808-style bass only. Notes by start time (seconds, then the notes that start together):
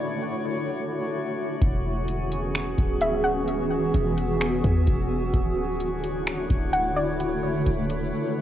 1.62 E1
2.78 D1
3.94 E1
4.64 E2
4.87 E1
5.34 D1
6.27 C#1
6.39 D1
6.50 D1
7.66 D1